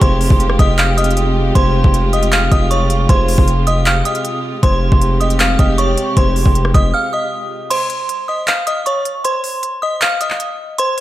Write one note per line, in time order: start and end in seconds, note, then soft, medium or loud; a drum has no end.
0.00 0.29 F1 loud
0.00 4.59 C3 medium
0.00 4.59 G#3 medium
0.00 7.67 F4 medium
0.00 4.59 G4 medium
0.00 0.56 C5 medium
0.00 0.56 C6 loud
0.00 kick loud
0.00 closed hi-hat loud
0.21 open hi-hat medium
0.30 0.58 F1 loud
0.30 kick loud
0.40 closed hi-hat medium
0.50 cross-stick medium
0.59 1.52 F1 loud
0.59 0.77 D#5 medium
0.59 0.76 D#6 medium
0.59 kick loud
0.59 closed hi-hat medium
0.78 0.96 F5 medium
0.78 0.95 F6 medium
0.78 clap loud
0.78 closed hi-hat medium
0.97 1.52 D#5 medium
0.97 1.52 D#6 medium
0.97 closed hi-hat medium
1.04 closed hi-hat medium
1.11 closed hi-hat soft
1.17 closed hi-hat medium
1.55 1.83 F1 loud
1.55 2.10 C5 medium
1.55 2.10 C6 loud
1.55 kick loud
1.55 closed hi-hat loud
1.84 2.49 F1 loud
1.84 kick loud
1.94 closed hi-hat medium
2.13 2.30 D#5 medium
2.13 2.30 D#6 medium
2.13 closed hi-hat medium
2.23 closed hi-hat medium
2.32 2.50 F5 medium
2.32 2.49 F6 medium
2.32 clap loud
2.32 closed hi-hat medium
2.51 3.07 F1 loud
2.51 2.69 D#5 medium
2.51 2.68 D#6 medium
2.51 kick loud
2.51 closed hi-hat medium
2.71 3.07 C#5 medium
2.71 3.07 C#6 medium
2.71 closed hi-hat medium
2.90 closed hi-hat medium
3.09 3.37 F1 loud
3.09 3.64 C5 medium
3.09 3.63 C6 loud
3.09 kick loud
3.09 closed hi-hat loud
3.28 open hi-hat medium
3.38 4.03 F1 loud
3.38 kick loud
3.48 closed hi-hat medium
3.67 3.84 D#5 medium
3.67 3.84 D#6 medium
3.67 closed hi-hat medium
3.86 4.04 F5 medium
3.86 4.03 F6 loud
3.86 clap loud
3.86 closed hi-hat medium
4.05 4.60 D#5 medium
4.05 4.60 D#6 medium
4.05 closed hi-hat medium
4.15 closed hi-hat soft
4.25 closed hi-hat medium
4.63 4.91 F1 loud
4.63 7.68 C3 medium
4.63 7.68 G#3 medium
4.63 7.68 G4 medium
4.63 5.18 C5 medium
4.63 5.17 C6 loud
4.63 kick loud
4.63 closed hi-hat loud
4.92 5.57 F1 loud
4.92 kick loud
5.02 closed hi-hat medium
5.20 5.38 D#5 medium
5.20 5.37 D#6 medium
5.20 closed hi-hat medium
5.30 closed hi-hat medium
5.40 5.57 F5 medium
5.40 5.57 F6 medium
5.40 clap loud
5.40 closed hi-hat medium
5.59 5.96 F1 loud
5.59 5.77 D#5 medium
5.59 5.76 D#6 medium
5.59 kick loud
5.59 closed hi-hat medium
5.78 6.15 C#5 medium
5.78 6.14 C#6 loud
5.78 closed hi-hat medium
5.98 closed hi-hat medium
6.17 6.45 F1 loud
6.17 6.71 C5 medium
6.17 6.71 C6 loud
6.17 kick loud
6.17 closed hi-hat loud
6.36 open hi-hat medium
6.46 6.73 F1 loud
6.46 kick medium
6.55 closed hi-hat medium
6.65 cross-stick medium
6.74 6.93 F1 loud
6.74 6.92 D#5 medium
6.74 6.91 D#6 medium
6.74 kick loud
6.74 closed hi-hat medium
6.94 7.11 F5 medium
6.94 7.11 F6 medium
7.13 7.68 D#5 medium
7.13 7.67 D#6 medium
7.70 8.25 C5 medium
7.70 8.25 C6 loud
7.70 closed hi-hat medium
7.70 crash loud
7.90 closed hi-hat medium
8.09 closed hi-hat medium
8.28 8.46 D#5 medium
8.28 8.45 D#6 medium
8.47 8.65 F5 medium
8.47 8.64 F6 medium
8.47 clap loud
8.47 closed hi-hat medium
8.67 8.84 D#5 medium
8.67 8.84 D#6 medium
8.67 closed hi-hat medium
8.86 9.23 C#5 medium
8.86 9.22 C#6 medium
8.86 closed hi-hat medium
9.05 closed hi-hat medium
9.24 9.79 C5 medium
9.24 9.79 C6 loud
9.24 closed hi-hat medium
9.44 open hi-hat medium
9.63 closed hi-hat medium
9.82 10.00 D#5 medium
9.82 9.99 D#6 medium
10.01 10.19 F5 medium
10.01 10.19 F6 medium
10.01 clap loud
10.01 closed hi-hat medium
10.21 10.75 D#5 medium
10.21 10.75 D#6 medium
10.21 closed hi-hat medium
10.30 clap medium
10.40 closed hi-hat medium
10.78 11.01 C5 medium
10.78 11.01 C6 loud
10.78 closed hi-hat loud